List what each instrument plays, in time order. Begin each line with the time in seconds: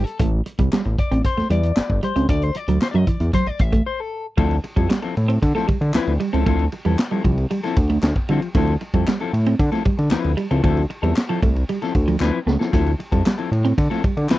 0.04 clean electric guitar A4, closed hi-hat
0.19 analog synth bass A1, clean electric guitar A3, kick, closed hi-hat
0.46 muted clean electric guitar stroke, closed hi-hat
0.59 analog synth bass C2, clean electric guitar G3, kick, closed hi-hat
0.72 clean electric guitar G3, snare, clap
0.84 analog synth bass A1, muted clean electric guitar stroke, closed hi-hat
0.98 clean electric guitar D5, kick, closed hi-hat
1.11 analog synth bass A1, clean electric guitar C4, closed hi-hat
1.24 clean electric guitar C5, muted clean electric guitar stroke, kick, closed hi-hat
1.37 analog synth bass E2, clean electric guitar A3, snare, closed hi-hat
1.50 analog synth bass E2, clean electric guitar G3 D5, closed hi-hat
1.63 closed hi-hat
1.77 analog synth bass G1, muted clean electric guitar stroke, snare, clap
1.90 analog synth bass G1, kick
2.03 clean electric guitar G3 C5, closed hi-hat
2.16 analog synth bass C#2, clean electric guitar C4, closed hi-hat
2.29 analog synth bass D2, clean electric guitar A3 D5, kick, closed hi-hat
2.42 clean electric guitar C5, closed hi-hat
2.55 clean electric guitar D5, muted clean electric guitar stroke, closed hi-hat
2.68 analog synth bass D2, clean electric guitar F#3, closed hi-hat
2.81 clean electric guitar C5, muted clean electric guitar stroke, snare, clap
2.91 analog synth bass F#2, clean electric guitar F#3 D5, closed hi-hat
2.96 clean electric guitar D#5
3.07 clean electric guitar E3 D5, kick, closed hi-hat
3.20 analog synth bass E2, closed hi-hat
3.33 clean electric guitar F#3 C5, kick, closed hi-hat
3.46 analog synth bass A1, clean electric guitar D5, muted clean electric guitar stroke, closed hi-hat
3.59 analog synth bass A1, clean electric guitar E5, kick, closed hi-hat
3.72 clean electric guitar A3, kick, closed hi-hat
3.86 clean electric guitar C5
4.00 clean electric guitar A4
4.37 analog synth bass D2, clean electric guitar F3 A3 C4 E4 A4, kick, ride
4.51 ride
4.64 muted clean electric guitar stroke, ride
4.76 analog synth bass F2, clean electric guitar F3 G3 C4 E4 A4, kick, ride
4.89 clean electric guitar G3, muted clean electric guitar stroke, snare, clap, ride
5.02 clean electric guitar F3 C4 E4 A4, muted clean electric guitar stroke, ride
5.17 analog synth bass A2, ride
5.28 clean electric guitar C4, muted clean electric guitar stroke, ride
5.42 analog synth bass D3, muted clean electric guitar stroke, kick, ride
5.55 clean electric guitar F3 A3 C4 E4 A4, snare, ride
5.68 analog synth bass D3, clean electric guitar G3, kick, ride
5.81 analog synth bass D3, muted clean electric guitar stroke, ride
5.94 analog synth bass D2, clean electric guitar F3 C4 E4 B4, muted clean electric guitar stroke, snare, clap, ride
6.07 analog synth bass D2, ride
6.20 clean electric guitar G3, muted clean electric guitar stroke, ride
6.33 analog synth bass C#2, clean electric guitar F3 C4 E4 A4, ride
6.46 analog synth bass D2, clean electric guitar F3 A3 C4 E4 A4, kick, ride
6.59 ride
6.72 muted clean electric guitar stroke, ride
6.85 analog synth bass E2, clean electric guitar F3 G3 C4 E4 A4, ride
6.98 muted clean electric guitar stroke, snare, clap, ride
7.11 clean electric guitar F3 G3 C4 E4 A4, ride
7.24 analog synth bass C2, clean electric guitar F3, muted clean electric guitar stroke, kick, ride
7.38 muted clean electric guitar stroke, ride
7.50 clean electric guitar G3, muted clean electric guitar stroke, ride
7.63 clean electric guitar F3 C4 E4 A4, muted clean electric guitar stroke, snare, ride
7.76 analog synth bass D2, kick, ride
7.90 clean electric guitar A3, muted clean electric guitar stroke, ride
8.03 analog synth bass D2, snare, clap, ride
8.16 muted clean electric guitar stroke, kick, ride
8.28 analog synth bass D3, clean electric guitar F3 G3 C4 E4 A4, ride
8.42 muted clean electric guitar stroke, ride
8.55 analog synth bass D2, clean electric guitar F3 A3 C4 E4 A4, kick, ride
8.67 ride
8.81 muted clean electric guitar stroke, ride
8.94 analog synth bass F2, clean electric guitar F3 G3 C4 E4 A4, kick, ride
9.07 clean electric guitar G3, muted clean electric guitar stroke, snare, clap, ride
9.20 clean electric guitar F3 C4 E4 A4, muted clean electric guitar stroke, ride
9.33 analog synth bass A2, muted clean electric guitar stroke, ride
9.46 clean electric guitar C4, muted clean electric guitar stroke, ride
9.59 analog synth bass D3, muted clean electric guitar stroke, kick, ride
9.72 clean electric guitar F3 A3 C4 E4 A4, snare, ride
9.85 analog synth bass D3, clean electric guitar G3, muted clean electric guitar stroke, kick, ride
9.98 analog synth bass D3, muted clean electric guitar stroke, ride
10.10 analog synth bass D2, clean electric guitar F3 C4 E4 B4, muted clean electric guitar stroke, snare, clap, ride
10.24 analog synth bass D2, ride
10.37 clean electric guitar G3, muted clean electric guitar stroke, ride
10.51 analog synth bass C#2, clean electric guitar F3 C4 E4 A4, ride
10.63 analog synth bass D2, clean electric guitar F3 A3 C4 E4 A4, kick, ride
10.77 ride
10.89 muted clean electric guitar stroke, ride
11.02 analog synth bass E2, clean electric guitar F3 G3 C4 E4 A4, ride
11.16 muted clean electric guitar stroke, snare, clap, ride
11.29 clean electric guitar F3 C4 E4 A4, ride
11.42 analog synth bass C2, clean electric guitar A3, muted clean electric guitar stroke, kick, ride
11.56 muted clean electric guitar stroke, ride
11.69 clean electric guitar G3, muted clean electric guitar stroke, ride
11.82 clean electric guitar F3 C4 E4 A4, muted clean electric guitar stroke, snare, ride
11.95 analog synth bass D2, kick, ride
12.08 clean electric guitar F3, muted clean electric guitar stroke, ride
12.20 analog synth bass D2, clean electric guitar F3 C4 E4 B4, snare, clap
12.46 analog synth bass C#2, clean electric guitar A3, muted clean electric guitar stroke, snare
12.59 clean electric guitar F3 C4 E4 A4, snare
12.72 analog synth bass D2, clean electric guitar F3 A3 C4 E4 A4, kick, hi-hat pedal, ride
12.86 ride
12.98 muted clean electric guitar stroke, ride
13.12 analog synth bass F2, clean electric guitar F3 G3 C4 E4 A4, kick, ride
13.25 clean electric guitar G3, muted clean electric guitar stroke, snare, clap, ride
13.38 clean electric guitar F3 C4 E4 A4, muted clean electric guitar stroke, ride
13.52 analog synth bass A2, ride
13.65 clean electric guitar C4, muted clean electric guitar stroke, ride
13.77 analog synth bass D3, muted clean electric guitar stroke, kick, ride
13.90 clean electric guitar F3 A3 C4 E4 A4, snare, ride
14.04 analog synth bass D3, clean electric guitar G3, kick, ride
14.17 analog synth bass D3, muted clean electric guitar stroke, ride
14.29 analog synth bass D2, clean electric guitar F3 C4 E4 B4, muted clean electric guitar stroke, snare, clap, ride